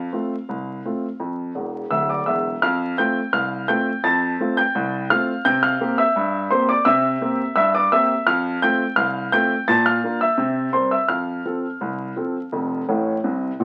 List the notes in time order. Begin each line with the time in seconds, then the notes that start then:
Already playing: F5
0.13 A3 C4 F4
0.49 C2
0.85 A3 C4 F4
1.20 F2
1.55 E1 E2
1.91 D1 D2 E5 E6
2.09 D5 D6
2.26 E1 E2 E5 E6
2.62 F2 F5 F6
2.98 A3 C4 F4 G5 G6
3.33 C2 F5 F6
3.68 A3 C4 F4 G5 G6
4.04 F2 A5 A6
4.40 A3 C4 F4
4.57 G5 G6
4.75 C2
5.10 A3 C4 F4 F5 F6
5.45 C3 G5 G6
5.63 F5 F6
5.81 A#3 C4 G4
5.98 E5 E6
6.16 G2
6.51 A#3 C4 G4 C5 C6
6.69 D5 D6
6.85 C3 E5 E6
7.21 A#3 C4 G4
7.56 G2 E5 E6
7.75 D5 D6
7.92 A#3 C4 G4 E5 E6
8.27 F2 F5 F6
8.62 A3 C4 F4 G5 G6
8.96 C2 F5 F6
9.32 A3 C4 F4 G5 G6
9.68 A#2 A5 A6
9.86 F5 F6
10.04 A#3 D4 F4
10.21 E5 E6
10.38 C3
10.73 G3 C4 A#4 C5 C6
10.91 E5 E6
11.08 F2 F5 F6
11.45 F3 C4 A4
11.81 C2
12.16 F3 C4 A4
12.52 F1 F2
12.89 A1 A2
13.24 C2 C3
13.60 A#1 A#2